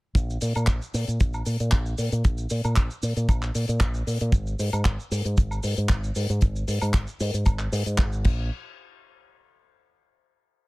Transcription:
0.15 A#1, kick, closed hi-hat, shaker
0.30 shaker
0.41 A#2, open hi-hat, shaker
0.55 A#2, closed hi-hat, high woodblock, shaker
0.67 A#1, kick, clap, closed hi-hat, shaker
0.82 shaker
0.94 A#2, open hi-hat, shaker
1.07 A#2, closed hi-hat, shaker
1.20 A#1, kick, closed hi-hat, shaker
1.33 high woodblock, shaker
1.45 A#2, open hi-hat, shaker
1.60 A#2, closed hi-hat, shaker
1.71 A#1, kick, clap, closed hi-hat, shaker
1.86 shaker
1.98 A#2, open hi-hat, shaker
2.12 A#2, closed hi-hat, shaker
2.24 A#1, kick, closed hi-hat, shaker
2.38 shaker
2.50 A#2, open hi-hat, shaker
2.64 A#2, closed hi-hat, high woodblock, shaker
2.76 A#1, kick, clap, closed hi-hat, shaker
2.91 shaker
3.03 A#2, open hi-hat, shaker
3.17 A#2, closed hi-hat, shaker
3.29 A#1, kick, closed hi-hat, high woodblock, shaker
3.42 clap, shaker
3.55 A#2, open hi-hat, shaker
3.68 A#2, closed hi-hat, shaker
3.80 A#1, kick, clap, closed hi-hat, shaker
3.94 shaker
4.07 A#2, open hi-hat, shaker
4.20 A#2, closed hi-hat, shaker
4.32 G#1, kick, closed hi-hat, shaker
4.47 shaker
4.59 G#2, open hi-hat, shaker
4.73 G#2, closed hi-hat, high woodblock, shaker
4.85 G#1, kick, clap, closed hi-hat, shaker
5.00 shaker
5.11 G#2, open hi-hat, shaker
5.25 G#2, closed hi-hat, shaker
5.37 G#1, kick, closed hi-hat, shaker
5.51 high woodblock, shaker
5.63 G#2, open hi-hat, shaker
5.77 G#2, closed hi-hat, shaker
5.89 G#1, kick, clap, closed hi-hat, shaker
6.04 shaker
6.15 G#2, open hi-hat, shaker
6.29 G#2, closed hi-hat, shaker
6.41 G#1, kick, closed hi-hat, shaker
6.56 shaker
6.68 G#2, open hi-hat, shaker
6.81 G#2, closed hi-hat, high woodblock, shaker
6.94 G#1, kick, clap, closed hi-hat, shaker
7.07 shaker
7.20 G#2, open hi-hat, shaker
7.34 G#2, closed hi-hat, shaker
7.46 G#1, kick, closed hi-hat, high woodblock, shaker
7.59 clap, shaker
7.72 G#2, open hi-hat, shaker
7.86 G#2, closed hi-hat, shaker
7.98 G#1, kick, clap, closed hi-hat, shaker
8.12 shaker
8.24 A#1, kick, crash

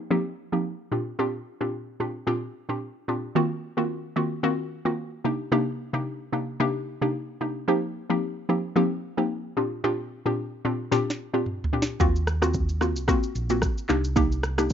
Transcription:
0.11 F3 A#3 C4 D#4 G4
0.52 F3 A#3 C4 D#4 G4
0.92 A#2 C4 D4 F4 G4
1.19 A#2 C4 D4 F4 G4
1.61 A#2 C4 D4 F4 G4
2.00 A#2 C4 D4 F4 G4
2.27 A#2 C4 D4 F4 G4
2.69 A#2 C4 D4 F4 G4
3.08 A#2 C4 D4 F4 G4
3.35 D#3 A#3 C4 F4 F#4
3.77 D#3 A#3 C4 F4 F#4
4.16 D#3 A#3 C4 F4 F#4
4.43 D#3 A#3 C4 F4 F#4
4.85 D#3 A#3 C4 F4 F#4
5.24 C3 A#3 D4 D#4 G4
5.52 C3 A#3 D4 D#4 G4
5.93 C3 A#3 D4 D#4 G4
6.32 C3 A#3 D4 D#4 G4
6.60 C3 A#3 D4 D#4 G4
7.01 C3 A#3 D4 D#4 G4
7.41 C3 A#3 D4 D#4 G4
7.68 F3 A#3 C4 D#4 G4
8.10 F3 A#3 C4 D#4 G4
8.49 F3 A#3 C4 D#4 G4
8.76 F3 A#3 C4 D#4 G4
9.17 F3 A#3 C4 D#4 G4
9.57 A#2 C4 D4 F4 G4
9.84 A#2 C4 D4 F4 G4
10.26 A#2 C4 D4 F4 G4
10.65 A#2 C4 D4 F4 G4
10.91 A#2 C4 D4 F4 G4, snare
11.10 snare
11.33 A#2 C4 D4 F4 G4
11.46 mid tom
11.64 floor tom
11.73 A#2 C4 D4 F4 G4
11.82 snare
12.00 D#2 A#3 C4 F4 F#4, kick, shaker
12.16 shaker
12.27 cross-stick, shaker
12.42 A#3 C4 F4 F#4, cross-stick, shaker
12.54 kick, shaker
12.69 shaker
12.81 A#3 C4 F4 F#4, cross-stick, shaker
12.96 C2, shaker
13.08 A#3 C4 F4 F#4, kick, cross-stick, shaker
13.23 shaker
13.35 A#1, shaker
13.50 A#3 C4 F4 F#4, shaker
13.62 kick, cross-stick, shaker
13.78 shaker
13.89 C2 A#3 D4 D#4 G4, clap, shaker
14.04 shaker
14.16 A#3 D4 D#4 G4, kick, shaker
14.32 shaker
14.43 cross-stick, shaker
14.58 A#3 D4 D#4 G4, cross-stick, shaker
14.70 shaker

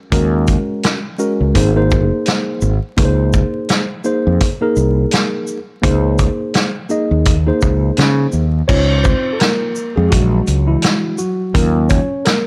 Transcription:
0.12 D#2 G#3 C#4 F#4 A#4, kick, closed hi-hat
0.47 kick, closed hi-hat, shaker
0.83 snare, closed hi-hat
1.18 G#3 C#4 F#4 A#4, shaker
1.41 C#2
1.54 G#1 A#3 D#4 G#4 C5, kick, closed hi-hat
1.76 A#3 D#4 G#4 C5
1.91 kick, shaker
2.26 snare, closed hi-hat
2.61 G#1, shaker
2.97 C#2 A#3 D#4 G#4 B4, kick, closed hi-hat
3.05 C5
3.33 kick, shaker
3.69 snare, closed hi-hat
4.04 A#3 D#4 G#4 C5, shaker
4.27 F2
4.40 kick, closed hi-hat
4.61 A#3 D#4 G#4 A#4
4.76 C2, shaker
5.11 snare, closed hi-hat
5.47 shaker
5.82 C#2 A#3 D#4 G#4 C5, kick, closed hi-hat
6.18 kick, closed hi-hat, shaker
6.54 snare, closed hi-hat
6.89 A#3 D#4 G#4 D#5, shaker
7.11 D#2
7.25 kick, closed hi-hat
7.46 A#3 D#4 G#4 C5
7.61 C#2, kick, shaker
7.97 C#3, snare, closed hi-hat
8.32 D#2, shaker
8.68 C#2 C#4 D#4 F4 C5 C#5, kick, crash
9.04 C4 C5, kick, shaker
9.33 A4
9.39 A#3 A#4, snare, closed hi-hat
9.76 shaker
9.96 F2 G#3 G#4
10.10 A#1 F#3 G#3 D4 F#4, kick, closed hi-hat
10.47 C#2, closed hi-hat, shaker
10.68 E3 E4
10.82 snare, closed hi-hat
11.18 F#3 F#4, shaker
11.54 D#2 F#3 A#3 C#4 F4 A#4, kick, closed hi-hat
11.89 C#4 C#5, kick, closed hi-hat, shaker
12.25 A#3 A#4, snare, closed hi-hat

